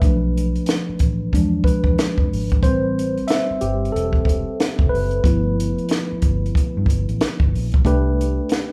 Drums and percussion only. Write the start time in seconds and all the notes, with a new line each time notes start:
0.02 kick, closed hi-hat
0.37 closed hi-hat
0.56 closed hi-hat
0.66 snare, closed hi-hat
0.99 kick, closed hi-hat
1.33 kick, closed hi-hat
1.64 kick, closed hi-hat
1.84 kick
1.98 snare, closed hi-hat
2.18 kick
2.33 open hi-hat
2.50 kick, closed hi-hat
2.63 kick, closed hi-hat
2.99 closed hi-hat
3.18 closed hi-hat
3.28 snare, closed hi-hat
3.61 closed hi-hat
3.85 closed hi-hat
3.96 closed hi-hat
4.13 kick
4.25 kick
4.29 closed hi-hat
4.60 snare, closed hi-hat
4.79 kick
4.95 open hi-hat
5.11 closed hi-hat
5.24 kick, closed hi-hat
5.60 closed hi-hat
5.78 closed hi-hat
5.89 snare, closed hi-hat
6.22 kick, closed hi-hat
6.46 closed hi-hat
6.55 kick, closed hi-hat
6.86 kick, closed hi-hat
7.09 closed hi-hat
7.21 snare, closed hi-hat
7.40 kick
7.55 open hi-hat
7.72 kick, closed hi-hat
7.85 kick, closed hi-hat
8.21 closed hi-hat
8.49 snare, closed hi-hat